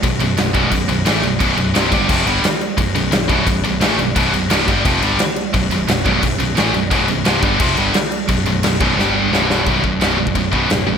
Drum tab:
CC |x-x-x-x-x-x-x-x-|x-x-x-x-x-x-x-x-|x-x-x-x-x-x-x-x-|x-x-x-x-x-x-x-x-|
SD |----o-------o---|----o-------o---|----o-------o---|----o-------o---|
BD |o-----o-o-------|o-----o-o-------|o-----o-o-------|o-----o-o-------|

CC |x-x-x-x-x-x-x-x-|x-x-x-x-x-x-x-x-|x-x-x-x---------|x---x---x---x---|
SD |----o-------o---|----o-------o---|----o---o---o-o-|----o-------o---|
BD |o-----o-o-------|o-----o-o-------|o-----o---------|o-o----oo-o-----|